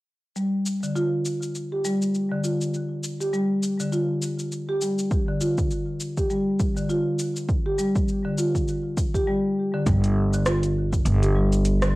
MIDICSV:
0, 0, Header, 1, 4, 480
1, 0, Start_track
1, 0, Tempo, 594059
1, 292, Time_signature, 4, 2, 24, 8
1, 9659, End_track
2, 0, Start_track
2, 0, Title_t, "Marimba"
2, 0, Program_c, 0, 12
2, 291, Note_on_c, 0, 55, 71
2, 370, Note_off_c, 0, 55, 0
2, 672, Note_on_c, 0, 50, 64
2, 768, Note_off_c, 0, 50, 0
2, 771, Note_on_c, 0, 65, 71
2, 850, Note_off_c, 0, 65, 0
2, 1391, Note_on_c, 0, 67, 61
2, 1448, Note_off_c, 0, 67, 0
2, 1492, Note_on_c, 0, 55, 69
2, 1571, Note_off_c, 0, 55, 0
2, 1869, Note_on_c, 0, 50, 67
2, 1966, Note_off_c, 0, 50, 0
2, 1971, Note_on_c, 0, 65, 58
2, 2050, Note_off_c, 0, 65, 0
2, 2590, Note_on_c, 0, 67, 67
2, 2648, Note_off_c, 0, 67, 0
2, 2692, Note_on_c, 0, 55, 71
2, 2770, Note_off_c, 0, 55, 0
2, 3069, Note_on_c, 0, 50, 67
2, 3166, Note_off_c, 0, 50, 0
2, 3171, Note_on_c, 0, 65, 70
2, 3250, Note_off_c, 0, 65, 0
2, 3788, Note_on_c, 0, 67, 67
2, 3847, Note_off_c, 0, 67, 0
2, 3892, Note_on_c, 0, 55, 60
2, 3971, Note_off_c, 0, 55, 0
2, 4271, Note_on_c, 0, 50, 68
2, 4367, Note_off_c, 0, 50, 0
2, 4370, Note_on_c, 0, 65, 70
2, 4450, Note_off_c, 0, 65, 0
2, 4989, Note_on_c, 0, 67, 71
2, 5047, Note_off_c, 0, 67, 0
2, 5091, Note_on_c, 0, 55, 76
2, 5170, Note_off_c, 0, 55, 0
2, 5470, Note_on_c, 0, 50, 69
2, 5567, Note_off_c, 0, 50, 0
2, 5570, Note_on_c, 0, 65, 72
2, 5650, Note_off_c, 0, 65, 0
2, 6189, Note_on_c, 0, 67, 73
2, 6247, Note_off_c, 0, 67, 0
2, 6289, Note_on_c, 0, 55, 74
2, 6369, Note_off_c, 0, 55, 0
2, 6668, Note_on_c, 0, 50, 70
2, 6766, Note_off_c, 0, 50, 0
2, 6772, Note_on_c, 0, 65, 72
2, 6851, Note_off_c, 0, 65, 0
2, 7389, Note_on_c, 0, 67, 72
2, 7448, Note_off_c, 0, 67, 0
2, 7492, Note_on_c, 0, 55, 75
2, 7571, Note_off_c, 0, 55, 0
2, 7868, Note_on_c, 0, 50, 78
2, 7966, Note_off_c, 0, 50, 0
2, 7972, Note_on_c, 0, 55, 72
2, 8050, Note_off_c, 0, 55, 0
2, 8351, Note_on_c, 0, 50, 70
2, 8447, Note_off_c, 0, 50, 0
2, 8452, Note_on_c, 0, 65, 69
2, 8531, Note_off_c, 0, 65, 0
2, 9071, Note_on_c, 0, 67, 67
2, 9129, Note_off_c, 0, 67, 0
2, 9173, Note_on_c, 0, 55, 75
2, 9251, Note_off_c, 0, 55, 0
2, 9550, Note_on_c, 0, 50, 73
2, 9647, Note_off_c, 0, 50, 0
2, 9659, End_track
3, 0, Start_track
3, 0, Title_t, "Upright bass"
3, 0, Program_c, 1, 32
3, 7969, Note_on_c, 1, 31, 95
3, 8893, Note_off_c, 1, 31, 0
3, 8930, Note_on_c, 1, 31, 96
3, 9659, Note_off_c, 1, 31, 0
3, 9659, End_track
4, 0, Start_track
4, 0, Title_t, "Drums"
4, 294, Note_on_c, 9, 69, 27
4, 374, Note_off_c, 9, 69, 0
4, 534, Note_on_c, 9, 69, 65
4, 615, Note_off_c, 9, 69, 0
4, 672, Note_on_c, 9, 69, 39
4, 753, Note_off_c, 9, 69, 0
4, 774, Note_on_c, 9, 69, 27
4, 855, Note_off_c, 9, 69, 0
4, 1013, Note_on_c, 9, 69, 59
4, 1094, Note_off_c, 9, 69, 0
4, 1151, Note_on_c, 9, 69, 35
4, 1232, Note_off_c, 9, 69, 0
4, 1253, Note_on_c, 9, 69, 26
4, 1333, Note_off_c, 9, 69, 0
4, 1493, Note_on_c, 9, 69, 69
4, 1574, Note_off_c, 9, 69, 0
4, 1631, Note_on_c, 9, 69, 41
4, 1712, Note_off_c, 9, 69, 0
4, 1733, Note_on_c, 9, 69, 30
4, 1814, Note_off_c, 9, 69, 0
4, 1972, Note_on_c, 9, 69, 72
4, 2053, Note_off_c, 9, 69, 0
4, 2111, Note_on_c, 9, 69, 41
4, 2191, Note_off_c, 9, 69, 0
4, 2214, Note_on_c, 9, 69, 30
4, 2294, Note_off_c, 9, 69, 0
4, 2454, Note_on_c, 9, 69, 74
4, 2535, Note_off_c, 9, 69, 0
4, 2593, Note_on_c, 9, 69, 39
4, 2674, Note_off_c, 9, 69, 0
4, 2694, Note_on_c, 9, 69, 29
4, 2775, Note_off_c, 9, 69, 0
4, 2933, Note_on_c, 9, 69, 69
4, 3014, Note_off_c, 9, 69, 0
4, 3070, Note_on_c, 9, 69, 39
4, 3151, Note_off_c, 9, 69, 0
4, 3171, Note_on_c, 9, 69, 30
4, 3252, Note_off_c, 9, 69, 0
4, 3411, Note_on_c, 9, 69, 70
4, 3492, Note_off_c, 9, 69, 0
4, 3549, Note_on_c, 9, 69, 41
4, 3630, Note_off_c, 9, 69, 0
4, 3653, Note_on_c, 9, 69, 29
4, 3734, Note_off_c, 9, 69, 0
4, 3892, Note_on_c, 9, 69, 73
4, 3973, Note_off_c, 9, 69, 0
4, 4030, Note_on_c, 9, 69, 43
4, 4111, Note_off_c, 9, 69, 0
4, 4130, Note_on_c, 9, 36, 111
4, 4130, Note_on_c, 9, 69, 33
4, 4211, Note_off_c, 9, 36, 0
4, 4211, Note_off_c, 9, 69, 0
4, 4371, Note_on_c, 9, 69, 74
4, 4452, Note_off_c, 9, 69, 0
4, 4508, Note_on_c, 9, 36, 101
4, 4509, Note_on_c, 9, 69, 44
4, 4589, Note_off_c, 9, 36, 0
4, 4589, Note_off_c, 9, 69, 0
4, 4612, Note_on_c, 9, 69, 32
4, 4692, Note_off_c, 9, 69, 0
4, 4851, Note_on_c, 9, 69, 71
4, 4931, Note_off_c, 9, 69, 0
4, 4989, Note_on_c, 9, 36, 54
4, 4989, Note_on_c, 9, 69, 38
4, 5069, Note_off_c, 9, 36, 0
4, 5069, Note_off_c, 9, 69, 0
4, 5091, Note_on_c, 9, 69, 32
4, 5172, Note_off_c, 9, 69, 0
4, 5330, Note_on_c, 9, 36, 105
4, 5331, Note_on_c, 9, 69, 77
4, 5411, Note_off_c, 9, 36, 0
4, 5412, Note_off_c, 9, 69, 0
4, 5469, Note_on_c, 9, 69, 41
4, 5550, Note_off_c, 9, 69, 0
4, 5572, Note_on_c, 9, 69, 33
4, 5653, Note_off_c, 9, 69, 0
4, 5811, Note_on_c, 9, 69, 74
4, 5892, Note_off_c, 9, 69, 0
4, 5949, Note_on_c, 9, 69, 43
4, 6030, Note_off_c, 9, 69, 0
4, 6050, Note_on_c, 9, 36, 117
4, 6051, Note_on_c, 9, 69, 32
4, 6131, Note_off_c, 9, 36, 0
4, 6132, Note_off_c, 9, 69, 0
4, 6291, Note_on_c, 9, 69, 72
4, 6372, Note_off_c, 9, 69, 0
4, 6428, Note_on_c, 9, 36, 100
4, 6429, Note_on_c, 9, 69, 42
4, 6509, Note_off_c, 9, 36, 0
4, 6510, Note_off_c, 9, 69, 0
4, 6531, Note_on_c, 9, 69, 29
4, 6611, Note_off_c, 9, 69, 0
4, 6772, Note_on_c, 9, 69, 66
4, 6853, Note_off_c, 9, 69, 0
4, 6908, Note_on_c, 9, 36, 56
4, 6911, Note_on_c, 9, 69, 40
4, 6989, Note_off_c, 9, 36, 0
4, 6992, Note_off_c, 9, 69, 0
4, 7013, Note_on_c, 9, 69, 30
4, 7094, Note_off_c, 9, 69, 0
4, 7250, Note_on_c, 9, 36, 102
4, 7253, Note_on_c, 9, 69, 80
4, 7331, Note_off_c, 9, 36, 0
4, 7334, Note_off_c, 9, 69, 0
4, 7388, Note_on_c, 9, 36, 57
4, 7392, Note_on_c, 9, 69, 42
4, 7469, Note_off_c, 9, 36, 0
4, 7472, Note_off_c, 9, 69, 0
4, 7970, Note_on_c, 9, 36, 111
4, 7972, Note_on_c, 9, 42, 61
4, 7973, Note_on_c, 9, 69, 51
4, 8051, Note_off_c, 9, 36, 0
4, 8053, Note_off_c, 9, 42, 0
4, 8054, Note_off_c, 9, 69, 0
4, 8111, Note_on_c, 9, 42, 43
4, 8112, Note_on_c, 9, 69, 29
4, 8192, Note_off_c, 9, 42, 0
4, 8193, Note_off_c, 9, 69, 0
4, 8351, Note_on_c, 9, 69, 60
4, 8432, Note_off_c, 9, 69, 0
4, 8452, Note_on_c, 9, 37, 72
4, 8452, Note_on_c, 9, 42, 59
4, 8452, Note_on_c, 9, 69, 50
4, 8532, Note_off_c, 9, 37, 0
4, 8532, Note_off_c, 9, 42, 0
4, 8533, Note_off_c, 9, 69, 0
4, 8590, Note_on_c, 9, 42, 39
4, 8590, Note_on_c, 9, 69, 31
4, 8671, Note_off_c, 9, 42, 0
4, 8671, Note_off_c, 9, 69, 0
4, 8829, Note_on_c, 9, 36, 93
4, 8832, Note_on_c, 9, 69, 57
4, 8910, Note_off_c, 9, 36, 0
4, 8913, Note_off_c, 9, 69, 0
4, 8934, Note_on_c, 9, 42, 62
4, 8935, Note_on_c, 9, 69, 53
4, 9015, Note_off_c, 9, 42, 0
4, 9015, Note_off_c, 9, 69, 0
4, 9072, Note_on_c, 9, 42, 43
4, 9073, Note_on_c, 9, 69, 31
4, 9153, Note_off_c, 9, 42, 0
4, 9154, Note_off_c, 9, 69, 0
4, 9312, Note_on_c, 9, 42, 29
4, 9313, Note_on_c, 9, 69, 58
4, 9393, Note_off_c, 9, 42, 0
4, 9394, Note_off_c, 9, 69, 0
4, 9413, Note_on_c, 9, 42, 60
4, 9414, Note_on_c, 9, 69, 51
4, 9494, Note_off_c, 9, 42, 0
4, 9495, Note_off_c, 9, 69, 0
4, 9552, Note_on_c, 9, 37, 76
4, 9552, Note_on_c, 9, 42, 42
4, 9552, Note_on_c, 9, 69, 29
4, 9633, Note_off_c, 9, 37, 0
4, 9633, Note_off_c, 9, 42, 0
4, 9633, Note_off_c, 9, 69, 0
4, 9659, End_track
0, 0, End_of_file